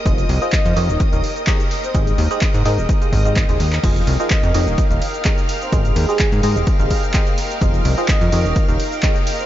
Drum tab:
CC |----------------|----------------|x---------------|----------------|
RD |----------------|----------------|--x---x---x---x-|--x---x---x---x-|
HH |xxoxxxoxxxoxxxox|xxoxxxoxxxoxxxox|xxoxxxoxxxoxxxox|xxoxxxoxxxoxxxox|
SH |xx-xxx-xxx-xxx-x|xx-xxx-xxx-xxx-x|xx-xxx-xxx-xxx-x|xx-xxx-xxx-xxx-x|
CP |----x-------x---|----x-------x--x|----x-------x---|----x-------x---|
BD |o---o---o---o---|o---o---o-o-o---|o---o---o---o---|o---o---o-o-o---|

CC |----------------|
RD |--x---x---x---x-|
HH |xxoxxxoxxxoxxxox|
SH |xx-xxx-xxx-xxx-x|
CP |----x-------x---|
BD |o---o---o---o---|